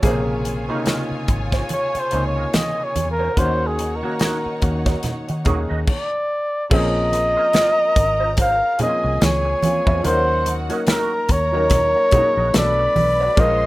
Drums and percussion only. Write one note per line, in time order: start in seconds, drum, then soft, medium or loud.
0.03 kick loud
0.03 closed hi-hat medium
0.03 muted conga medium
0.45 closed hi-hat medium
0.45 muted conga soft
0.86 snare loud
0.86 closed hi-hat medium
0.86 high conga medium
1.28 kick medium
1.28 closed hi-hat medium
1.52 kick medium
1.52 snare soft
1.52 closed hi-hat soft
1.69 closed hi-hat medium
1.69 muted conga medium
1.95 closed hi-hat medium
2.11 closed hi-hat medium
2.54 snare loud
2.54 closed hi-hat medium
2.54 high conga medium
2.96 closed hi-hat medium
2.96 high conga medium
3.37 kick loud
3.37 closed hi-hat medium
3.37 muted conga soft
3.79 closed hi-hat medium
3.79 muted conga soft
4.19 snare loud
4.19 closed hi-hat medium
4.19 high conga medium
4.62 kick medium
4.62 closed hi-hat medium
4.86 kick loud
4.86 snare soft
4.86 closed hi-hat soft
5.03 snare soft
5.03 closed hi-hat medium
5.03 muted conga soft
5.03 low conga medium
5.29 closed hi-hat soft
5.45 kick loud
5.45 closed hi-hat medium
5.45 low conga medium
5.87 kick loud
5.87 crash medium
6.71 kick loud
6.71 crash loud
6.71 muted conga medium
7.12 closed hi-hat medium
7.12 muted conga soft
7.53 snare loud
7.53 closed hi-hat medium
7.53 high conga medium
7.96 kick loud
7.96 closed hi-hat medium
8.37 kick loud
8.37 closed hi-hat medium
8.37 muted conga soft
8.79 closed hi-hat medium
8.79 low conga medium
9.22 snare loud
9.22 closed hi-hat loud
9.22 high conga medium
9.63 closed hi-hat medium
9.63 high conga medium
9.87 kick loud
10.04 closed hi-hat loud
10.04 muted conga medium
10.46 closed hi-hat medium
10.46 muted conga soft
10.70 closed hi-hat medium
10.87 snare loud
10.87 closed hi-hat medium
10.87 high conga medium
11.29 kick medium
11.29 closed hi-hat medium
11.70 kick loud
11.70 snare soft
11.70 closed hi-hat loud
11.70 muted conga soft
11.70 low conga medium
12.11 kick loud
12.11 closed hi-hat medium
12.11 low conga medium
12.54 snare loud
12.54 closed hi-hat loud
12.54 high conga medium
12.96 open hi-hat medium
12.96 high conga medium
13.37 kick loud
13.37 closed hi-hat medium
13.37 muted conga medium